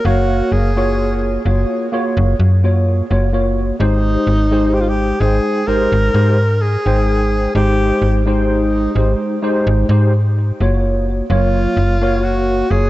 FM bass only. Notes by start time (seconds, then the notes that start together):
0.05 F#1
0.52 F#1
1.46 F#1
2.17 F#1
2.39 F#2
3.11 F#1
3.80 G#1
4.27 G#1
5.20 G#1
5.68 G#1
5.92 G#1
6.14 G#2
6.86 G#1
7.55 G#1
8.02 G#1
8.95 G#1
9.67 G#1
9.89 G#2
10.60 F#1
11.30 F#1
11.77 F#1
12.71 F#1